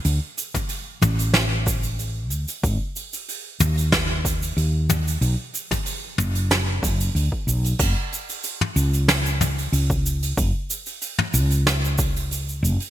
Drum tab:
CC |----------------|----------------|----------------|x---------------|
HH |o-ooo-ooo-ooo-oo|o-ooo-ooo-ooo-oo|o-ooo-ooo-ooo-oo|o-ooo-ooo-ooo-oo|
SH |x-xxx-xxx-xxx-xx|x-xxx-xxx-xxx-xx|x-xxx-xxx-xxx-xx|x-xxx-xxxxxxxxxx|
SD |--------o-------|--------o-------|--------o-------|--------o-------|
T2 |---o--o---------|------o-------o-|---o--o---------|-----o----o-----|
BD |---o------o-----|o-------o-o-----|---o------o--o--|o------------o--|

CC |----------------|
HH |o-ooo-ooo-ooo-oo|
SH |x-xxx-xxxxxxxxxx|
SD |--------o-------|
T2 |-----o----------|
BD |o---------o-----|